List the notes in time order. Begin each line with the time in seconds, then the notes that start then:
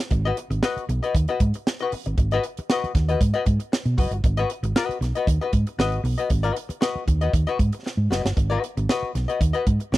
0.11 G#1, muted hollow-body jazz guitar stroke, kick, closed hi-hat
0.25 F#4 B4 D#5
0.37 muted hollow-body jazz guitar stroke, closed hi-hat
0.50 G#1, muted hollow-body jazz guitar stroke, closed hi-hat
0.63 F#4 B4 D#5, snare
0.77 muted fingered electric bass stroke, closed hi-hat
0.89 B1, muted hollow-body jazz guitar stroke, closed hi-hat
1.03 F#4 B4 D#5, closed hi-hat
1.15 D#2, muted hollow-body jazz guitar stroke, kick, closed hi-hat
1.28 F#4 B4 D#5, closed hi-hat
1.40 G#2, muted hollow-body jazz guitar stroke, kick, closed hi-hat
1.54 muted hollow-body jazz guitar stroke, closed hi-hat
1.67 muted hollow-body jazz guitar stroke, snare
1.79 F#4 B4 D#5, closed hi-hat
1.92 muted fingered electric bass stroke, muted hollow-body jazz guitar stroke, open hi-hat
2.06 G#1, muted hollow-body jazz guitar stroke, closed hi-hat
2.18 G#1, muted hollow-body jazz guitar stroke, kick, closed hi-hat
2.31 F#4 B4 D#5, closed hi-hat
2.43 muted hollow-body jazz guitar stroke, closed hi-hat
2.57 muted fingered electric bass stroke, muted hollow-body jazz guitar stroke, closed hi-hat
2.70 F#4 B4 D#5, snare
2.84 muted fingered electric bass stroke, closed hi-hat
2.95 D#2, muted hollow-body jazz guitar stroke, kick, snare, closed hi-hat
3.08 F#4 B4 D#5, closed hi-hat
3.21 G#2, muted hollow-body jazz guitar stroke, kick, closed hi-hat
3.34 F#4 B4 D#5, closed hi-hat
3.46 G#2, muted hollow-body jazz guitar stroke, kick, closed hi-hat
3.60 muted hollow-body jazz guitar stroke, closed hi-hat
3.72 muted hollow-body jazz guitar stroke, snare
3.85 B2, closed hi-hat
3.98 F#1 F#4 B4 D#5, kick, open hi-hat
4.11 G1, muted hollow-body jazz guitar stroke, closed hi-hat
4.24 G#1, muted hollow-body jazz guitar stroke, kick, closed hi-hat
4.37 F#4 B4 D#5, closed hi-hat
4.50 muted hollow-body jazz guitar stroke, closed hi-hat
4.63 G#1, muted hollow-body jazz guitar stroke, closed hi-hat
4.76 F#4 B4 D#5, snare
4.89 muted fingered electric bass stroke, closed hi-hat
5.01 B1, muted hollow-body jazz guitar stroke, snare, closed hi-hat
5.15 F#4 B4 D#5, closed hi-hat
5.27 D#2, muted hollow-body jazz guitar stroke, kick, closed hi-hat
5.41 F#4 B4 D#5
5.53 G#2, muted hollow-body jazz guitar stroke, kick, closed hi-hat
5.67 muted hollow-body jazz guitar stroke, closed hi-hat
5.78 G#1 F#4 B4 D#5, snare
5.92 closed hi-hat
6.04 B1, muted hollow-body jazz guitar stroke, open hi-hat
6.18 F#4 B4 D#5, closed hi-hat
6.30 G#1, muted hollow-body jazz guitar stroke, kick, closed hi-hat
6.43 F#4 B4 D#5, closed hi-hat
6.56 muted hollow-body jazz guitar stroke, closed hi-hat
6.69 muted hollow-body jazz guitar stroke, muted fingered electric bass stroke, closed hi-hat
6.81 F#4 B4 D#5, snare
6.95 muted fingered electric bass stroke
7.07 D#2, muted hollow-body jazz guitar stroke, kick, closed hi-hat
7.21 F#4 B4 D#5, closed hi-hat
7.33 D#2, muted hollow-body jazz guitar stroke, kick, closed hi-hat
7.47 F#4 B4 D#5, closed hi-hat
7.59 G#2, muted hollow-body jazz guitar stroke, kick, closed hi-hat
7.72 muted hollow-body jazz guitar stroke, closed hi-hat
7.86 muted hollow-body jazz guitar stroke, snare
7.97 G#2
8.10 F#1 F#4 B4 D#5, snare
8.24 G1, muted hollow-body jazz guitar stroke, snare
8.37 G#1, muted hollow-body jazz guitar stroke, kick, closed hi-hat
8.50 F#4 B4 D#5, closed hi-hat
8.63 muted hollow-body jazz guitar stroke, closed hi-hat
8.77 G#1, muted hollow-body jazz guitar stroke, closed hi-hat
8.89 F#4 B4 D#5, snare
9.02 muted fingered electric bass stroke
9.15 B1, muted hollow-body jazz guitar stroke, snare, closed hi-hat
9.28 F#4 B4 D#5, closed hi-hat
9.41 D#2, muted hollow-body jazz guitar stroke, kick, closed hi-hat
9.53 F#4 B4 D#5, closed hi-hat
9.66 G#2, muted hollow-body jazz guitar stroke, kick, closed hi-hat
9.80 muted hollow-body jazz guitar stroke, closed hi-hat
9.92 G#1, muted hollow-body jazz guitar stroke, snare